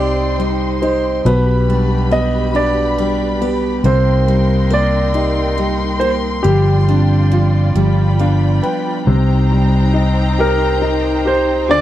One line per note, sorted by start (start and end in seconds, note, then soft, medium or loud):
0.00 1.22 C2 medium
0.00 1.22 C3 medium
0.00 0.37 G3 soft
0.00 2.15 G3 medium
0.00 1.26 C4 soft
0.00 0.38 D#4 soft
0.00 0.81 D#4 soft
0.00 1.23 D#4 medium
0.00 0.82 G4 soft
0.00 1.21 G4 soft
0.00 1.23 C5 medium
0.00 0.35 D5 medium
0.00 1.21 G5 medium
0.00 1.23 C6 medium
0.38 1.23 G3 soft
0.38 1.34 D#4 soft
0.82 1.24 D#4 soft
0.82 2.54 G4 medium
0.82 1.27 C5 medium
1.25 3.80 B1 medium
1.25 3.80 B2 medium
1.25 2.10 B3 medium
1.25 3.82 G4 medium
1.25 3.82 B4 medium
1.25 2.15 B4 medium
1.25 3.82 B5 medium
1.68 2.97 G3 soft
1.68 2.97 D4 soft
2.11 3.40 B3 soft
2.11 3.84 B3 soft
2.11 2.57 D#5 medium
2.54 3.80 D4 soft
2.54 3.41 G4 soft
2.54 3.49 D5 medium
2.98 3.82 G3 soft
2.98 3.93 D4 soft
3.41 3.83 B3 soft
3.41 5.14 G4 soft
3.84 6.40 C2 medium
3.84 6.41 C3 medium
3.84 4.69 A#3 medium
3.84 6.42 D#4 medium
3.84 6.43 A#4 medium
3.84 4.74 C5 medium
3.84 6.42 G5 medium
3.84 7.72 C6 medium
4.28 5.57 G3 soft
4.28 5.56 D#4 soft
4.70 6.53 A#3 soft
4.70 6.00 A#3 soft
4.70 5.55 D5 medium
5.14 6.41 D#4 soft
5.14 6.01 G4 soft
5.57 6.43 G3 soft
5.57 6.53 D#4 soft
6.00 6.44 A#3 soft
6.00 7.35 G4 soft
6.00 6.10 C5 medium
6.43 7.72 G1 medium
6.43 7.30 F3 medium
6.43 7.71 G3 medium
6.43 9.04 F4 medium
6.43 7.38 G4 medium
6.43 9.04 D5 medium
6.43 7.73 G5 soft
6.89 7.85 C4 soft
6.89 7.74 D4 soft
7.32 7.74 F3 soft
7.32 7.75 F4 soft
7.73 8.59 G1 medium
7.73 9.16 F3 medium
7.73 9.03 G3 medium
7.73 9.05 G5 soft
7.73 9.05 B5 medium
8.19 9.16 B3 soft
8.19 9.05 D4 soft
8.19 8.61 F5 medium
8.63 9.16 D4 soft
8.63 9.06 B4 soft
8.63 9.04 G5 medium
9.07 11.68 C2 loud
9.07 11.65 C3 medium
9.07 11.67 D#4 medium
9.07 11.81 C5 medium
9.07 11.67 G5 medium
9.07 11.67 A#5 medium
9.51 11.22 G3 medium
9.94 10.80 D#4 medium
10.39 11.24 G4 medium
10.39 11.29 A#4 medium
10.82 11.66 D#4 medium
11.25 11.68 G4 medium
11.25 11.71 C5 medium
11.68 11.81 D2 loud
11.68 11.81 D3 medium
11.68 11.81 F4 medium
11.68 11.81 D5 loud
11.68 11.81 G#5 medium
11.68 11.81 D6 medium